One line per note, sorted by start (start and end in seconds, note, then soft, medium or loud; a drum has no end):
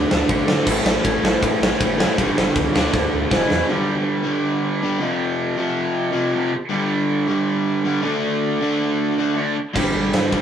0.00 0.64 D3 medium
0.00 0.65 A3 loud
0.00 0.66 D4 loud
0.11 0.23 D2 medium
0.11 snare loud
0.28 0.42 A1 loud
0.28 0.65 D3 medium
0.28 0.66 A3 medium
0.28 0.67 D4 medium
0.28 kick loud
0.28 ride medium
0.48 0.61 D3 medium
0.48 snare loud
0.64 0.79 A1 loud
0.64 1.96 A2 loud
0.64 1.97 E3 loud
0.64 1.97 A3 loud
0.64 kick loud
0.64 crash loud
0.84 0.97 A1 loud
0.84 snare loud
1.05 1.17 A1 medium
1.05 kick loud
1.05 ride medium
1.22 1.35 A1 medium
1.22 1.79 E3 medium
1.22 1.78 A3 medium
1.22 snare loud
1.26 1.77 A2 medium
1.43 1.55 A2 loud
1.43 kick loud
1.43 ride medium
1.61 1.73 A1 medium
1.61 snare loud
1.78 2.05 F#1 loud
1.78 2.15 A2 medium
1.78 2.16 E3 medium
1.78 2.17 A3 medium
1.78 kick loud
1.78 ride medium
1.98 2.17 A2 medium
1.98 2.17 E3 medium
1.98 2.16 A3 loud
1.98 snare loud
2.18 2.31 G1 loud
2.18 2.73 G2 medium
2.18 2.73 D3 medium
2.18 2.74 G3 medium
2.18 kick loud
2.18 ride medium
2.38 2.50 G1 medium
2.38 snare loud
2.56 2.68 C#2 medium
2.56 kick loud
2.56 ride medium
2.74 2.87 D2 medium
2.74 3.30 D3 medium
2.74 3.30 A3 medium
2.74 3.31 D4 loud
2.74 snare loud
2.94 3.06 D2 medium
2.94 kick loud
2.94 snare medium
3.13 3.25 D2 medium
3.30 3.44 E1 loud
3.30 3.67 E2 loud
3.30 3.68 B2 medium
3.30 3.68 E3 loud
3.30 kick loud
3.30 snare loud
3.50 3.63 E2 loud
3.50 snare medium
3.68 4.24 G2 medium
3.68 4.24 D3 loud
3.68 4.22 G3 medium
4.23 4.81 G2 medium
4.23 4.81 D3 medium
4.23 4.80 G3 medium
4.82 4.98 G2 medium
4.82 5.00 D3 medium
4.82 5.01 G3 medium
4.99 5.55 F2 loud
4.99 5.56 C3 loud
4.99 5.57 F3 loud
5.56 6.13 F2 medium
5.56 6.13 C3 medium
5.56 6.11 F3 medium
6.12 6.52 F2 medium
6.12 6.51 C3 medium
6.12 6.50 F3 medium
6.33 6.51 F2 medium
6.33 6.52 C3 medium
6.37 6.53 F3 medium
6.69 7.26 G2 loud
6.69 7.27 D3 medium
6.69 7.26 G3 loud
7.28 7.83 G2 medium
7.28 7.84 D3 medium
7.28 7.84 G3 medium
7.84 8.03 G2 medium
7.84 8.01 D3 medium
7.84 8.04 G3 medium
8.03 8.59 D3 loud
8.03 8.60 A3 loud
8.03 8.62 D4 loud
8.61 9.17 D3 medium
8.61 9.18 A3 medium
8.61 9.17 D4 medium
9.18 9.56 D3 medium
9.18 9.56 A3 medium
9.18 9.55 D4 medium
9.35 9.54 D3 medium
9.35 9.55 A3 medium
9.35 9.56 D4 medium
9.74 9.94 G1 medium
9.74 10.30 G2 medium
9.74 10.31 D3 medium
9.74 10.29 G3 medium
9.74 kick loud
9.74 crash medium
9.94 10.12 G1 loud
10.13 10.31 G2 medium
10.13 snare loud
10.13 ride medium
10.30 10.42 G1 medium
10.30 10.42 G2 medium
10.30 10.42 D3 medium
10.30 10.42 G3 medium
10.30 kick loud